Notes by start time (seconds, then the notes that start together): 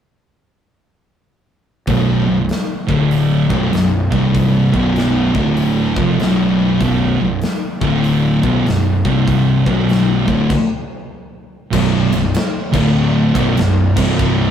1.87 B0 B1 F#2 B2, kick, open hi-hat
2.27 B0 B1 F#2
2.49 snare, open hi-hat
2.89 D1 D2 A2 D3, kick
3.11 open hi-hat
3.50 B0 B1 F#2 B2, kick
3.73 B0 B1 F#2, snare, open hi-hat
4.12 C1 C2 G2 C3, kick
4.35 kick, open hi-hat
4.73 B0 B1 F#2 B2, kick
4.96 snare, open hi-hat
5.35 D1 D2 A2 D3, kick
5.57 open hi-hat
5.96 F1 F2 C3 F3, kick
6.19 B0 B1 F#2 B2, snare, open hi-hat
6.81 B0 B1 F#2 B2, kick, open hi-hat
7.20 B0 B1 F#2
7.42 snare, open hi-hat
7.81 D1 D2 A2 D3, kick
8.04 open hi-hat
8.43 B0 B1 F#2 B2, kick
8.66 B0 B1 F#2, snare, open hi-hat
9.05 C1 C2 G2 C3, kick
9.28 kick, open hi-hat
9.66 B0 B1 F#2 B2, kick
9.89 snare, open hi-hat
10.28 D1 D2 A2 D3, kick
10.50 kick, crash
11.73 B0 B1 F#2 B2, kick, crash
12.12 B0 B1 F#2, snare, ride
12.35 snare, ride
12.73 D1 D2 A2 D3, kick, crash
13.34 B0 B1 F#2 B2, kick, ride
13.57 B0 B1 F#2, snare, ride
13.95 C1 C2 G2 C3, kick, crash
14.19 kick